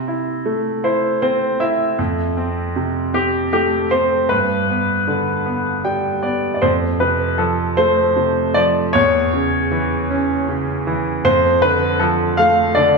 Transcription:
Already playing: C3
0.08 E4
0.46 A3
0.84 E4 C5
1.22 C4 C5
1.60 E4 E5
1.99 F2
2.37 C4
2.76 C3
3.14 C4 G4
3.53 A3 G4
3.91 C4 C5
4.29 G2 B4
4.69 B3
5.07 D3
5.46 B3
5.84 G3 G5
6.23 B3 D5
6.54 D5
6.62 F2 C5
7.00 C3 B4
7.38 F3 A4
7.77 A3 C5
8.16 C3
8.54 F3 D5
8.93 E2 C#5
9.33 C#3
9.71 E3
10.10 C#4
10.49 C#3
10.87 E3
11.25 F2 C5
11.62 D3 B4
11.99 F3 A4
12.37 A3 F5
12.75 D3 D5

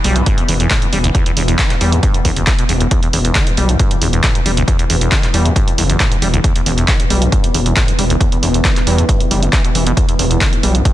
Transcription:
Already playing: E3 B3
0.04 B1 G3, open hi-hat
0.16 E2, closed hi-hat
0.26 G2, kick, closed hi-hat
0.38 E2, closed hi-hat
0.48 E1 E2, open hi-hat
0.60 E2, closed hi-hat
0.71 A2, kick, clap, closed hi-hat
0.82 E2, closed hi-hat
0.93 E1 G3, open hi-hat
1.04 D2, closed hi-hat
1.15 E2, kick, closed hi-hat
1.26 E2, closed hi-hat
1.37 E1 E2, open hi-hat
1.48 E2, closed hi-hat
1.59 E3, kick, clap, closed hi-hat
1.70 E2, clap, closed hi-hat
1.81 E2 G3, open hi-hat
1.92 E2, closed hi-hat
2.03 G2, kick, closed hi-hat
2.14 E2, closed hi-hat
2.25 F#1 E2, kick, open hi-hat
2.36 E2, closed hi-hat
2.47 E3, kick, clap, closed hi-hat
2.59 B2, closed hi-hat
2.69 E1 E2, open hi-hat
2.81 E2, closed hi-hat
2.91 E2 E3 B3, kick, closed hi-hat
3.03 E2, closed hi-hat
3.13 E1 E2, open hi-hat
3.25 E2, closed hi-hat
3.35 E3, kick, clap, closed hi-hat
3.47 E2, closed hi-hat
3.57 B1 G3, open hi-hat
3.69 E2, closed hi-hat
3.79 G2, kick, closed hi-hat
3.91 E2, closed hi-hat
4.02 E1 E2, open hi-hat
4.13 E2, closed hi-hat
4.24 kick, clap, closed hi-hat
4.35 E2, closed hi-hat
4.46 E1 G3, open hi-hat
4.57 D2, closed hi-hat
4.68 E2, kick, closed hi-hat
4.79 E2, closed hi-hat
4.90 E1 E2, open hi-hat
5.01 E2, closed hi-hat
5.12 E3, kick, clap, closed hi-hat
5.23 E2, clap, closed hi-hat
5.34 E2 G3, open hi-hat
5.45 E2, closed hi-hat
5.56 G2, kick, closed hi-hat
5.68 E2, closed hi-hat
5.78 F#1 E2, open hi-hat
5.90 E2, closed hi-hat
6.00 A2, kick, clap, closed hi-hat
6.12 E2, closed hi-hat
6.22 E1 G3, open hi-hat
6.34 D2, closed hi-hat
6.44 E2, kick, closed hi-hat
6.55 E2, closed hi-hat
6.66 E1 E2, open hi-hat
6.78 E2, closed hi-hat
6.88 E3, kick, clap, closed hi-hat
7.00 E2, closed hi-hat
7.10 B1 G3, open hi-hat
7.22 E2, closed hi-hat
7.32 G2, kick, closed hi-hat
7.44 E2, closed hi-hat
7.54 E1 E2, open hi-hat
7.66 E2, closed hi-hat
7.76 A2, kick, clap, closed hi-hat
7.88 E2, closed hi-hat
7.98 E1 G3, open hi-hat
8.10 D2, closed hi-hat
8.21 E2, kick, closed hi-hat
8.32 E2, closed hi-hat
8.42 E1 E2, open hi-hat
8.54 E2, closed hi-hat
8.65 E3, kick, clap, closed hi-hat
8.76 E2, clap, closed hi-hat
8.87 E2 G3, open hi-hat
8.98 E2, closed hi-hat
9.09 G2, kick, closed hi-hat
9.20 E2, closed hi-hat
9.31 F#1 G3, open hi-hat
9.42 E2, closed hi-hat
9.53 E3, kick, clap, closed hi-hat
9.65 B2, closed hi-hat
9.75 E1 E3, open hi-hat
9.87 B2, closed hi-hat
9.97 E2, kick, closed hi-hat
10.09 E2, closed hi-hat
10.19 E1 E2, open hi-hat
10.31 E2, closed hi-hat
10.41 E3, kick, clap, closed hi-hat
10.53 E2, closed hi-hat
10.63 B1 G3, open hi-hat
10.75 E2, closed hi-hat
10.85 G2, kick, closed hi-hat

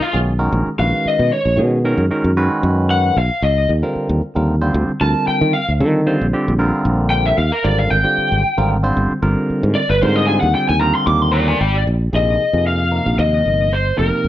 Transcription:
0.02 F4
0.13 B1 D#3 G#3 C#4 F#4 G#4
0.39 D#3 G#3 C#4 F#4 A#4
0.52 A#1
0.67 muted fretless electric bass stroke
0.78 A#1 D#3 G#3 C#4 F#4 B4 F5
1.06 D#5, muted fretless electric bass stroke
1.19 B2
1.33 C#5
1.45 A#1
1.57 B2 D#3 G#3 C#4 F#4 G#4
1.85 D#3 G#3 C#4 F#4 A#4
1.98 F#2
2.11 D#3 G#3 C#4 F#4 A#4
2.24 F#2
2.37 D#3 G#3 C#4 F#4 B4
2.63 F#2
2.90 F#5
3.17 B1 F5
3.42 C#2 D#5
3.69 D#2
3.82 D3 G3 C4 F4 A#4
3.96 muted fretless electric bass stroke
4.09 D#2
4.35 D#2 D3 G3 C4 F4 A#4
4.61 D3 G3 C4 F4 C5
4.74 D2
4.89 muted fretless electric bass stroke
5.00 D2 D3 G3 C4 F4 A#4 A5
5.28 G5, muted fretless electric bass stroke
5.41 D#3
5.53 F5
5.68 D2
5.80 D3 D#3 G3 C4 F4 A4
6.06 D3 G3 C4 F4 C5
6.21 A#1
6.33 D3 G3 C4 F4 G4
6.48 A#1
6.58 D3 G3 C4 F4 A#4
6.85 A#1
7.10 G5
7.26 E5
7.38 D#2 F5
7.52 A#4
7.64 G#1 D3 G3 C4 F4 A#4 D5
7.79 F5
7.90 G#1 G5
8.04 D3 G3 C4 F4 G4
8.18 muted fretless electric bass stroke
8.32 G#1
8.57 G#1 D3 G3 C4 F4 A#4
8.83 D3 G3 C4 F4 C5
8.97 G1
9.11 muted fretless electric bass stroke
9.22 G1 D3 G3 C4 F4 A#4
9.50 muted fretless electric bass stroke
9.63 G#2
9.75 D5
9.90 G1 B4
10.01 G#2 D3 G3 C4 F4 A#4 C5
10.16 D#5
10.27 D3 G3 C4 F4 G#4 G#5
10.41 D#2 F#5
10.54 D3 G3 C4 F4 C5 G5
10.69 D#2 G#5
10.80 D3 G3 C4 F4 A#4 A#5
10.95 C6
11.07 D#2 D6
11.22 C6
11.32 D5 A#5
11.48 G#5
11.61 G#1 G5
11.87 A#1
12.13 A#1 C3 F3 A#3 D#4 G#4 D#5
12.53 F2 C3 F3 A#3 D#4 G#4
12.67 F5
12.91 C3 F3 A#3 D#4 A#4
13.06 A#1
13.19 D#2 D#5
13.46 G1
13.73 C5
13.97 F1 C3 F3 A#3 D#4 G4 A#4
14.24 F1

